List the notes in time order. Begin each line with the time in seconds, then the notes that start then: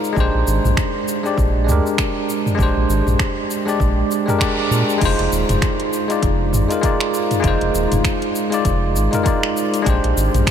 Already playing: G#3 D#4 F4 A#4 D5
0.04 shaker
0.13 A#1 G#3 D4, kick
0.17 G4 C5, shaker
0.34 A#1
0.47 G#1, shaker
0.64 A#1, mid tom, shaker
0.77 finger snap, kick, shaker
1.08 shaker
1.23 G#3 D4 G4 D5, shaker
1.38 A#1, kick, shaker
1.64 D2 G#3 D4, mid tom
1.69 G4 A#4, shaker
1.86 shaker
1.98 finger snap, kick, shaker
2.29 shaker
2.46 mid tom, shaker
2.55 A#1 G#3 D4, kick
2.60 G4 C5, shaker
2.76 A#1
2.89 G#1, shaker
3.06 A#1, mid tom, shaker
3.19 finger snap, kick, shaker
3.51 shaker
3.65 G#3 D4 G4 D5, shaker
3.80 A#1, kick, shaker
4.11 shaker
4.26 G#3 D4 G4 A#4, mid tom, shaker
4.39 G#3 D4 G4 D5, finger snap, kick, shaker
4.71 A#2, shaker
4.89 shaker
4.98 F1 G#3 D#4, kick, closed hi-hat, crash
5.02 F4 C5, shaker
5.19 F1, closed hi-hat
5.31 D#1, shaker
5.49 F1, closed hi-hat, mid tom, shaker
5.62 finger snap, kick, closed hi-hat, shaker
5.80 closed hi-hat
5.93 shaker
6.08 G#3 D#4 F4 D5, closed hi-hat, shaker
6.22 F1, kick, closed hi-hat, shaker
6.53 G#1, mid tom, shaker
6.68 G#3 D#4 F4 A#4, closed hi-hat, shaker
6.81 G#3 D#4 F4 D5, kick, closed hi-hat, shaker
7.00 finger snap
7.14 shaker
7.31 closed hi-hat, mid tom, shaker
7.40 F1 G#3 D#4, kick, closed hi-hat
7.45 F4 C5, shaker
7.61 F1, closed hi-hat
7.74 D#1, shaker
7.92 F1, closed hi-hat, mid tom, shaker
8.04 finger snap, kick, closed hi-hat, shaker
8.22 closed hi-hat
8.36 shaker
8.50 G#3 D#4 F4 D5, closed hi-hat, shaker
8.65 F1, kick, closed hi-hat, shaker
8.95 G#1, shaker
9.11 G#3 D#4 F4 A#4, closed hi-hat, mid tom, shaker
9.23 G#3 D#4 F4 D5, kick, closed hi-hat, shaker
9.43 finger snap
9.57 shaker
9.74 closed hi-hat, shaker
9.82 A#1 G#3 D4, kick
9.86 G4 C5, closed hi-hat, shaker
10.04 A#1, closed hi-hat
10.16 G#1, shaker
10.34 A#1, closed hi-hat, mid tom, shaker
10.47 finger snap, kick, closed hi-hat